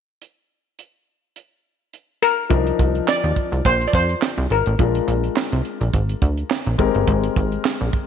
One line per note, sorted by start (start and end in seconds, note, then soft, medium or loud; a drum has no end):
0.22 closed hi-hat medium
0.79 closed hi-hat medium
1.36 closed hi-hat medium
1.93 closed hi-hat medium
2.23 3.10 A#4 medium
2.49 2.72 C2 loud
2.49 4.74 F3 medium
2.49 4.75 D4 medium
2.49 4.75 D#4 medium
2.49 4.75 A#4 medium
2.49 kick loud
2.49 closed hi-hat medium
2.67 closed hi-hat medium
2.79 3.01 C2 medium
2.79 kick medium
2.79 closed hi-hat medium
2.95 closed hi-hat soft
3.08 3.61 D5 loud
3.08 snare loud
3.08 clap medium
3.24 3.33 D#2 medium
3.24 closed hi-hat medium
3.36 kick medium
3.36 closed hi-hat medium
3.52 3.62 C2 medium
3.52 closed hi-hat medium
3.65 3.87 A#1 loud
3.65 3.86 C5 loud
3.65 kick medium
3.65 closed hi-hat medium
3.81 closed hi-hat medium
3.88 3.93 D5 medium
3.93 4.15 F2 medium
3.93 4.53 C5 medium
3.93 kick medium
3.93 closed hi-hat medium
4.09 closed hi-hat soft
4.22 snare loud
4.22 clap medium
4.38 4.47 C2 loud
4.38 closed hi-hat medium
4.50 4.62 G#1 medium
4.50 5.61 A#4 medium
4.50 closed hi-hat medium
4.66 4.76 A1 medium
4.66 closed hi-hat medium
4.79 5.01 A#1 loud
4.79 6.75 G#3 medium
4.79 6.75 D4 medium
4.79 6.75 F4 medium
4.79 6.75 A#4 medium
4.79 kick loud
4.79 closed hi-hat medium
4.95 closed hi-hat medium
5.08 5.29 A#1 medium
5.08 closed hi-hat medium
5.24 closed hi-hat soft
5.36 snare loud
5.36 clap medium
5.52 5.62 C2 medium
5.52 closed hi-hat medium
5.65 closed hi-hat medium
5.81 5.90 A#1 medium
5.81 closed hi-hat medium
5.93 6.15 G#1 medium
5.93 kick medium
5.93 closed hi-hat medium
6.09 closed hi-hat medium
6.22 6.44 D2 medium
6.22 kick medium
6.22 closed hi-hat medium
6.37 closed hi-hat soft
6.50 snare loud
6.50 clap medium
6.66 6.76 A#1 medium
6.66 closed hi-hat soft
6.78 6.91 G#1 loud
6.78 8.07 G#3 medium
6.78 8.07 C4 medium
6.78 8.07 G4 medium
6.78 8.07 A#4 medium
6.78 kick medium
6.78 closed hi-hat medium
6.95 7.05 G1 medium
6.95 closed hi-hat medium
7.07 7.29 G#1 loud
7.07 kick loud
7.07 closed hi-hat medium
7.24 closed hi-hat medium
7.36 7.58 G#1 medium
7.36 kick medium
7.36 closed hi-hat medium
7.52 closed hi-hat soft
7.65 snare loud
7.65 clap loud
7.81 7.90 A#1 medium
7.81 closed hi-hat medium
7.93 kick medium
7.93 closed hi-hat medium